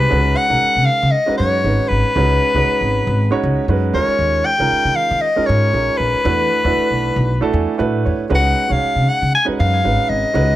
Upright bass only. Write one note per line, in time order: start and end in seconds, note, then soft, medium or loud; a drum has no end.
0.11 0.33 C#2 medium
0.50 0.60 B1 medium
0.63 muted upright bass stroke soft
0.76 0.86 C#3 medium
1.02 1.12 C#3 medium
1.28 muted upright bass stroke soft
1.39 1.61 F#2 medium
1.64 1.76 G#1 medium
1.79 muted upright bass stroke soft
1.90 2.02 G#1 medium
2.04 muted upright bass stroke soft
2.16 2.37 C#2 medium
2.55 2.65 C#2 medium
2.68 muted upright bass stroke soft
2.81 3.03 G#1 medium
3.07 3.29 G#1 medium
3.32 muted upright bass stroke soft
3.43 3.55 C#2 medium
3.68 3.90 F#2 medium
3.94 4.06 D#2 medium
4.07 muted upright bass stroke soft
4.19 4.41 D#2 medium
4.60 4.70 C#2 medium
4.71 muted upright bass stroke soft
4.85 4.95 D#3 medium
5.11 5.21 D#3 medium
5.38 muted upright bass stroke soft
5.49 5.71 G#2 loud
5.74 5.86 A#1 medium
5.89 muted upright bass stroke soft
6.00 6.11 A#1 medium
6.14 muted upright bass stroke soft
6.25 6.47 E2 loud
6.65 6.75 E2 medium
6.77 muted upright bass stroke soft
6.91 7.12 B1 medium
7.16 7.38 B1 medium
7.42 muted upright bass stroke soft
7.53 7.65 E2 medium
7.80 8.01 A2 medium
8.06 8.17 E2 medium
8.19 muted upright bass stroke soft
8.30 8.52 C#2 medium
8.70 8.80 B1 medium
8.82 muted upright bass stroke soft
8.96 9.06 C#3 medium
9.22 9.32 C#3 medium
9.48 muted upright bass stroke soft
9.60 9.81 F#2 loud
9.85 9.96 G#1 medium
9.99 muted upright bass stroke soft
10.09 10.21 G#1 medium
10.23 muted upright bass stroke soft
10.35 10.56 C#2 loud